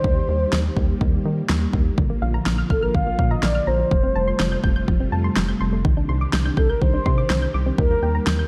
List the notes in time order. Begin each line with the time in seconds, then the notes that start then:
Already playing: D#3 G4 C5
0.04 D#2 G3 A#3, kick
0.29 D#2
0.53 D#2, snare
0.77 D#2, kick
1.01 D#2, kick
1.25 D#3
1.49 D#2, snare
1.73 D#2, kick
1.98 A#1 D3 F3 F4, kick
2.10 A#3
2.22 A#1 F5
2.34 A#5
2.46 A#1 F6, snare
2.58 F6
2.70 A#1 A4 F6, kick
2.83 A#4 F6
2.95 A#1 D3 F5, kick
3.07 A#3
3.19 A#2 F5, kick
3.31 D#5 A#5
3.43 A#1 D5 F6, snare
3.55 F6
3.67 A#1 C5 A#5
3.79 F3
3.91 F1 C3 F3 G3 A3 F4, kick
4.03 C4
4.16 F1 A5
4.28 C6
4.40 F1 G6, snare
4.52 G6
4.64 F1 G6, kick
4.76 G6
4.88 F1 F3, kick
5.00 C4
5.12 F2 A5
5.24 C6
5.36 F1 G6, snare
5.48 G6
5.61 F1 C6
5.73 A3
5.85 C2 D#3 D4 G4, kick
5.97 D4
6.09 C2 C6
6.21 D6
6.33 C2 G6, snare
6.45 G6
6.57 C2 A4 G6, kick
6.70 A#4 G6
6.81 C2 D#3 C5, kick
6.94 D4
7.06 C3 C6, kick
7.18 D6
7.30 C2 G6, snare
7.42 G6
7.54 C2 D6
7.66 C4
7.78 D#2 D#3 G3 A#3 A#4, kick
7.91 A#3
8.03 D#2 G5
8.15 A#5
8.27 D#2 G6, snare
8.39 G6